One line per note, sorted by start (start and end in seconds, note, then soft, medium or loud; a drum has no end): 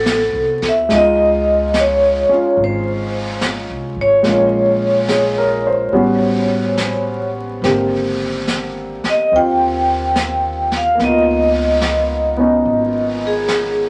0.00 0.30 A1 medium
0.00 0.90 B3 soft
0.00 0.91 C4 soft
0.00 0.91 E4 soft
0.00 0.91 F#4 medium
0.00 0.67 A4 medium
0.06 snare soft
0.06 hi-hat pedal soft
0.33 0.60 C2 medium
0.62 0.88 D2 soft
0.62 snare soft
0.69 0.94 E5 medium
0.89 2.25 C#2 medium
0.89 4.21 G#3 soft
0.89 4.24 D#4 soft
0.89 brush sweep soft
0.89 snare soft
0.93 2.30 F4 soft
0.93 1.79 D#5 medium
1.74 snare soft
1.74 hi-hat pedal soft
1.80 2.63 C#5 medium
2.29 4.23 C#4 soft
2.29 4.23 F4 soft
2.29 muted upright bass stroke soft
2.57 3.64 G#1 medium
2.57 brush sweep soft
2.64 3.40 C5 medium
3.41 snare soft
3.41 hi-hat pedal medium
3.69 3.94 C2 medium
3.96 4.22 G#1 medium
4.01 7.33 C#5 medium
4.23 5.88 A#1 medium
4.23 5.92 G#3 soft
4.23 5.92 A#3 soft
4.23 5.92 C#4 soft
4.23 5.93 F4 soft
4.23 brush sweep soft
4.23 snare soft
5.08 5.61 G#4 soft
5.08 snare soft
5.08 hi-hat pedal soft
5.38 5.81 A#4 soft
5.67 6.09 C5 soft
5.92 7.59 A1 medium
5.92 7.63 G3 soft
5.92 7.63 B3 soft
5.92 7.64 C#4 soft
5.92 7.64 F#4 soft
5.92 brush sweep soft
6.78 snare soft
6.78 hi-hat pedal soft
7.62 9.00 G#1 medium
7.62 11.01 D3 soft
7.62 10.94 A#3 soft
7.62 9.31 C4 soft
7.62 11.01 G4 soft
7.62 brush sweep soft
7.62 snare soft
8.48 snare soft
8.48 hi-hat pedal soft
9.04 muted upright bass stroke soft
9.04 snare soft
9.09 9.36 D#5 medium
9.31 10.95 D#2 medium
9.31 11.00 C4 soft
9.31 brush sweep soft
9.36 11.02 F4 soft
9.36 10.78 G5 medium
10.16 snare soft
10.16 hi-hat pedal soft
10.72 snare soft
10.77 11.00 F5 medium
10.95 13.89 A#3 soft
10.95 12.36 B3 soft
10.99 12.62 C#2 medium
10.99 12.39 D#4 soft
10.99 brush sweep soft
10.99 snare soft
11.04 13.89 F4 soft
11.04 13.30 D#5 medium
11.81 snare soft
11.81 hi-hat pedal soft
12.37 13.89 B3 soft
12.37 13.89 C#4 soft
12.37 13.89 D#4 soft
12.65 13.89 G#1 medium
12.65 brush sweep soft
13.27 13.89 G#4 medium
13.49 snare soft
13.49 hi-hat pedal soft